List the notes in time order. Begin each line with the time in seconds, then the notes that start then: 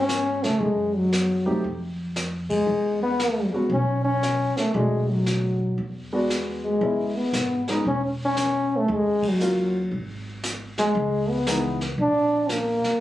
Already playing: G#2 C#4
0.09 snare, hi-hat pedal
0.44 C#3 A3, snare
0.60 F#2 G#3, brush sweep
0.96 F#3
1.13 snare, hi-hat pedal
1.46 E2 A3 C4 D#4 G4
1.64 F2, brush sweep
2.16 snare, hi-hat pedal
2.50 G#3, kick, ride
2.67 E2, brush sweep
3.03 B3
3.19 snare, hi-hat pedal
3.52 G#3 B3 C#4 F#4, muted upright bass stroke
3.70 B1 C#4, brush sweep
4.04 C#4
4.23 snare, hi-hat pedal
4.56 A3, muted upright bass stroke, snare
4.74 B1 G#3 A3 C#4 D4 F#4, brush sweep
5.11 F#3
5.26 snare, hi-hat pedal
5.78 E2, brush sweep
6.13 G#3 B3 D4 F#4
6.30 snare, hi-hat pedal
6.64 G#3
6.81 A1 G#3 B3 C#4 E4, brush sweep
7.16 B3
7.33 G#1, snare, hi-hat pedal
7.68 G#3 B3 C#4 D#4, snare
7.85 E1 C#4, brush sweep
8.25 C#4
8.37 snare, hi-hat pedal
8.77 A3
8.88 D#2, brush sweep
8.94 G#3
9.23 kick, ride
9.29 F#3
9.40 F#3 A#3 C#4 F4, hi-hat pedal
9.91 G#1, brush sweep
10.43 snare, hi-hat pedal
10.78 G#3, snare
10.95 C#2, brush sweep
11.30 B3
11.47 E3 G#3 B3 D#4, snare, hi-hat pedal
11.81 snare
11.98 A#1 D4, brush sweep
12.49 A#3, snare, hi-hat pedal
12.84 muted upright bass stroke, snare